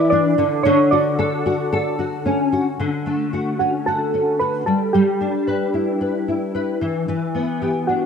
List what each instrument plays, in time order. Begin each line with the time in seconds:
Already playing: nylon-string guitar E3 E4 B4
0.10 nylon-string guitar D4, synth keys D5
0.38 nylon-string guitar D3
0.63 nylon-string guitar D3, synth keys C#5
0.91 nylon-string guitar F#4, synth keys D5
1.19 nylon-string guitar A4
1.46 nylon-string guitar F#4
1.73 nylon-string guitar A4
1.99 nylon-string guitar F#4
2.26 nylon-string guitar C#4
2.52 nylon-string guitar F#4
2.80 nylon-string guitar D3
3.06 nylon-string guitar A3
3.33 nylon-string guitar F#4
3.59 nylon-string guitar C#4, synth keys F#4
3.86 nylon-string guitar F#4, synth keys A4
4.14 nylon-string guitar C#4
4.39 nylon-string guitar F#4, synth keys B4
4.66 nylon-string guitar G3, synth keys A4
4.93 nylon-string guitar G3, synth keys G4
5.21 nylon-string guitar D4
5.47 nylon-string guitar B4
5.74 nylon-string guitar E4
6.01 nylon-string guitar B4
6.28 nylon-string guitar E4
6.55 nylon-string guitar B4
6.81 nylon-string guitar E3
7.08 nylon-string guitar E3
7.35 nylon-string guitar B3
7.62 nylon-string guitar G4
7.87 nylon-string guitar D4, synth keys F#4